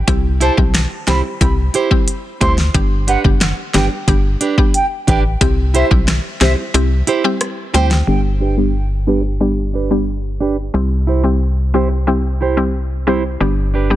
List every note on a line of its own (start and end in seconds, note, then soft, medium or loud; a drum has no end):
0.07 0.50 C2 loud
0.07 0.54 G3 loud
0.07 0.54 C4 medium
0.07 0.54 E4 medium
0.07 0.54 G4 loud
0.07 kick loud
0.07 closed hi-hat medium
0.40 0.56 E4 medium
0.40 0.56 G4 medium
0.40 0.56 C5 loud
0.40 0.52 A5 medium
0.40 closed hi-hat medium
0.57 0.86 B1 medium
0.57 0.72 G3 medium
0.57 0.72 C4 medium
0.57 0.73 E4 medium
0.57 0.73 G4 medium
0.57 kick loud
0.74 finger snap medium
0.74 snare loud
0.74 closed hi-hat medium
1.07 1.22 C2 loud
1.07 1.22 G3 medium
1.07 1.22 C4 medium
1.07 1.22 E4 medium
1.07 1.23 E4 medium
1.07 1.23 G4 medium
1.07 1.23 G4 loud
1.07 1.23 C5 loud
1.07 1.19 B5 medium
1.07 finger snap medium
1.07 snare loud
1.07 closed hi-hat medium
1.24 muted nylon-string guitar stroke medium
1.41 1.69 C2 loud
1.41 1.56 G3 medium
1.41 1.56 C4 medium
1.41 1.56 E4 medium
1.41 1.56 G4 loud
1.41 kick loud
1.41 closed hi-hat medium
1.74 1.89 E4 medium
1.74 1.89 G4 medium
1.74 1.90 C5 loud
1.74 closed hi-hat medium
1.91 2.06 G3 medium
1.91 2.06 C4 medium
1.91 2.06 E4 medium
1.91 2.06 G4 medium
1.91 kick loud
2.08 closed hi-hat medium
2.41 2.70 D2 loud
2.41 2.56 G3 medium
2.41 2.56 C4 medium
2.41 2.56 E4 medium
2.41 2.56 G4 medium
2.41 2.56 C5 medium
2.41 2.52 C6 medium
2.41 kick medium
2.41 closed hi-hat medium
2.58 snare medium
2.74 3.17 G1 loud
2.74 3.20 G3 medium
2.74 3.20 B3 medium
2.74 3.21 D4 medium
2.74 3.21 G4 loud
2.74 kick loud
2.74 closed hi-hat medium
3.07 3.22 D4 medium
3.07 3.23 G4 medium
3.07 3.23 B4 medium
3.07 3.19 F#5 medium
3.07 closed hi-hat medium
3.24 3.53 F#1 medium
3.24 3.39 G3 medium
3.24 3.39 B3 medium
3.24 3.39 D4 medium
3.24 3.40 G4 medium
3.24 kick loud
3.41 finger snap loud
3.41 snare loud
3.41 closed hi-hat medium
3.74 3.89 G1 loud
3.74 3.89 G3 medium
3.74 3.89 B3 medium
3.74 3.89 D4 medium
3.74 3.89 G4 loud
3.74 3.90 G4 medium
3.74 3.89 B4 medium
3.74 3.86 G5 medium
3.74 finger snap medium
3.74 snare loud
3.74 closed hi-hat medium
3.91 muted nylon-string guitar stroke soft
4.08 4.36 G1 loud
4.08 4.54 G3 medium
4.08 4.54 B3 medium
4.08 4.54 D4 medium
4.08 4.54 G4 loud
4.08 kick loud
4.08 closed hi-hat medium
4.41 4.56 D4 medium
4.41 4.56 G4 medium
4.41 4.57 B4 medium
4.41 closed hi-hat medium
4.58 4.73 G3 medium
4.58 4.73 B3 medium
4.58 4.73 D4 medium
4.58 4.73 G4 medium
4.58 kick loud
4.74 4.85 G5 medium
4.74 closed hi-hat medium
5.07 5.36 A1 medium
5.07 5.22 D4 medium
5.07 5.23 G4 medium
5.07 5.23 B4 medium
5.07 5.19 G5 medium
5.07 kick medium
5.07 closed hi-hat soft
5.41 5.84 C2 loud
5.41 5.87 G3 loud
5.41 5.87 C4 medium
5.41 5.87 E4 medium
5.41 5.87 G4 loud
5.41 kick loud
5.41 closed hi-hat medium
5.74 5.89 E4 medium
5.74 5.89 G4 medium
5.74 5.90 C5 medium
5.74 5.85 E5 medium
5.74 closed hi-hat medium
5.91 6.19 B1 medium
5.91 6.06 G3 medium
5.91 6.06 C4 medium
5.91 6.06 E4 medium
5.91 6.06 G4 medium
5.91 kick loud
6.08 finger snap loud
6.08 cross-stick medium
6.08 snare loud
6.08 closed hi-hat medium
6.41 6.55 C2 medium
6.41 6.56 G3 medium
6.41 6.56 C4 medium
6.41 6.56 E4 medium
6.41 6.56 G4 medium
6.41 6.57 C5 medium
6.41 6.52 E5 medium
6.41 finger snap medium
6.41 snare loud
6.41 closed hi-hat medium
6.58 muted nylon-string guitar stroke soft
6.74 7.03 C2 loud
6.74 6.89 G3 medium
6.74 6.89 C4 medium
6.74 6.89 E4 medium
6.74 6.89 G4 medium
6.74 closed hi-hat medium
7.07 7.22 E4 medium
7.07 7.23 G4 medium
7.07 7.23 C5 loud
7.07 closed hi-hat medium
7.24 7.70 G3 medium
7.24 7.70 C4 medium
7.24 7.71 E4 medium
7.24 7.71 G4 medium
7.41 cross-stick loud
7.41 closed hi-hat medium
7.74 8.03 D2 medium
7.74 8.05 G3 medium
7.74 8.05 C4 medium
7.74 7.89 E4 medium
7.74 8.05 E4 medium
7.74 7.89 G4 loud
7.74 8.05 G4 medium
7.74 7.90 C5 loud
7.74 7.85 G5 medium
7.74 closed hi-hat medium
7.91 snare medium
8.07 10.70 G1 medium
8.07 8.53 G3 medium
8.07 8.54 B3 medium
8.07 8.54 D4 medium
8.07 8.54 G4 loud
8.40 8.55 D4 medium
8.40 8.56 G4 loud
8.40 8.56 B4 loud
8.57 8.72 G3 medium
8.57 8.72 B3 medium
8.57 8.73 D4 medium
8.57 8.73 G4 medium
9.07 9.22 G3 medium
9.07 9.22 B3 medium
9.07 9.22 D4 medium
9.07 9.23 D4 medium
9.07 9.23 G4 medium
9.07 9.23 B4 medium
9.24 muted nylon-string guitar stroke soft
9.40 9.87 G3 medium
9.40 9.87 B3 medium
9.40 9.87 D4 medium
9.40 9.87 G4 medium
9.74 9.89 D4 medium
9.74 9.89 G4 medium
9.74 9.90 B4 medium
9.91 10.06 G3 medium
9.91 10.06 B3 medium
9.91 10.06 D4 medium
9.91 10.06 G4 medium
10.40 10.56 D4 medium
10.40 10.56 G4 medium
10.40 10.56 B4 medium
10.74 13.37 C2 medium
10.74 11.20 G3 medium
10.74 11.20 C4 medium
10.74 11.20 E4 medium
10.74 11.20 G4 loud
11.07 11.22 E4 medium
11.07 11.23 G4 medium
11.07 11.23 C5 medium
11.24 11.39 G3 medium
11.24 11.39 C4 medium
11.24 11.39 E4 medium
11.24 11.39 G4 medium
11.74 11.89 G3 medium
11.74 11.89 C4 medium
11.74 11.89 E4 medium
11.74 11.89 G4 medium
11.74 11.90 C5 medium
11.91 muted nylon-string guitar stroke soft
12.07 12.22 G3 medium
12.07 12.22 C4 medium
12.07 12.22 E4 medium
12.07 12.23 G4 medium
12.41 12.56 E4 medium
12.41 12.56 G4 medium
12.41 12.57 C5 medium
12.57 12.72 G3 medium
12.57 12.72 C4 medium
12.57 12.72 E4 medium
12.57 12.72 G4 medium
13.07 13.22 G3 medium
13.07 13.22 C4 medium
13.07 13.22 E4 medium
13.07 13.22 G4 medium
13.07 13.23 G4 medium
13.07 13.23 C5 medium
13.40 13.96 G1 medium
13.40 13.87 G3 loud
13.40 13.87 B3 medium
13.40 13.87 D4 medium
13.40 13.87 G4 loud
13.74 13.89 D4 medium
13.74 13.89 G4 medium
13.74 13.90 B4 medium
13.90 13.96 G3 medium
13.90 13.96 B3 medium
13.90 13.96 D4 medium
13.90 13.96 G4 medium